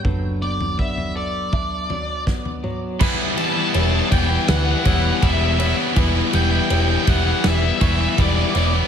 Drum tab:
CC |----------------|x---------------|----------------|
RD |----------------|--x-x-x-x-x-x-x-|x-x-x-x-x-x-x-x-|
SD |------------o---|--------o-------|--------o-------|
T2 |--------------o-|----------------|----------------|
FT |o--o-o--o-o--o--|----------------|----------------|
BD |o---o---o---o---|o-----o---o-o---|o-----o---o-o---|